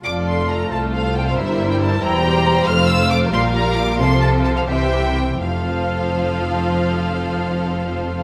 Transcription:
<<
  \new Staff \with { instrumentName = "Violin section" } { \time 6/8 \key f \major \tempo 4. = 89 d'''8 c'''8 bes''8 a''8 f''8 g''16 f''16 | e''8. g''16 a''8 bes''4. | f'''8 e'''8 d'''8 c'''8 bes''8 d'''8 | c'''8 a''8 a''16 f''16 g''4. |
f''2.~ | f''2. | }
  \new Staff \with { instrumentName = "Violin section" } { \time 6/8 \key f \major << { d''4. c''4.~ | c''4. g''4. | f''4. f''4. | c''4. e''4 r8 |
c''2.~ | c''2. | } \\ { a'4. a'4. | bes'4. c''4.~ | c''4. bes'4. | a'4. c''4 r8 |
a'2.~ | a'2. | } >> }
  \new Staff \with { instrumentName = "Viola section" } { \time 6/8 \key f \major << { f'4. f'4. | e'4. e'8 g'8 g'8 | f'2. | f'4. g'4 r8 |
f'2.~ | f'2. | } \\ { a2. | g4. g4. | a4. g4. | f4. e4 r8 |
f2.~ | f2. | } >> }
  \new Staff \with { instrumentName = "Cello section" } { \clef bass \time 6/8 \key f \major f,4. c,4. | g,4. e,4. | f,4. bes,4. | c4. c4. |
f,2.~ | f,2. | }
  \new Staff \with { instrumentName = "Double bass section" } { \clef bass \time 6/8 \key f \major f,,4. c,4. | g,,4. e,,4. | f,,4. bes,,4. | c,4. c,4. |
f,,2.~ | f,,2. | }
>>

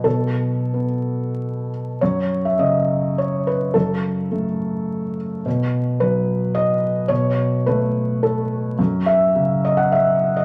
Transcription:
<<
  \new Staff \with { instrumentName = "Felt piano" } { \time 3/4 \key fis \dorian \tempo 4 = 106 a'2~ a'8 r8 | cis''8. e''16 dis''4 cis''8 b'8 | a'2~ a'8 r8 | r4 b'4 dis''4 |
cis''4 b'4 a'4 | r8 e''4 dis''16 fis''16 e''8. dis''16 | }
  \new Staff \with { instrumentName = "Felt piano" } { \clef bass \time 3/4 \key fis \dorian <b, fis>4 b2 | fis,4 cis2 | fis,4 a2 | b,4 fis2 |
b,4 a2 | fis,4 cis2 | }
>>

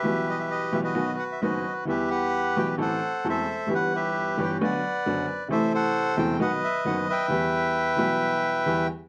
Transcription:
<<
  \new Staff \with { instrumentName = "Bandoneon" } { \time 4/4 \key e \minor \tempo 4 = 132 << { e''8 dis''16 e''16 dis''8 e''16 dis''8. fis''16 e''16 dis''8. r16 | e''8 fis''4 g''8 fis''4 e''4 | fis''8 e''4 g''8 fis''4. r8 | e''8 fis''4 g''8 fis''8 e''8 fis''8 g''8~ |
g''2.~ g''8 r8 | } \\ { <g' b'>4.~ <g' b'>16 <fis' b'>4~ <fis' b'>16 <fis' b'>4 | <g' b'>8 b'4. <a' c''>4 <a' c''>4 | b'8 <g' b'>4. <b' d''>2 | <a' c''>8 <a' c''>4. <b' dis''>4. <b' e''>8~ |
<b' e''>2.~ <b' e''>8 r8 | } >> }
  \new Staff \with { instrumentName = "Upright piano" } { \clef bass \time 4/4 \key e \minor <b,, b, e g b g'>4. <b,, b, e g b g'>8 <b,, b, dis fis b fis'>8 r8 <fis,, fis, dis fis b fis'>8 r8 | <e, e g b g'>4. <b,, b, e g b g'>8 <a,, a, e a c' a'>8 r8 <e,, e, e a c' a'>8 r8 | <g,, g, e g b g'>4. <g,, g, e g b g'>8 <b,, b, d fis b fis'>8 r8 <fis,, fis, d fis b fis'>8 r8 | <a,, a, c e a e'>4. <e,, e, c e a e'>8 <b,, b, dis fis b fis'>8 r8 <fis,, fis, dis fis b fis'>8 r8 |
<e, e g b g'>4. <b,, b, e g b g'>4. <e, e g b g'>8 r8 | }
>>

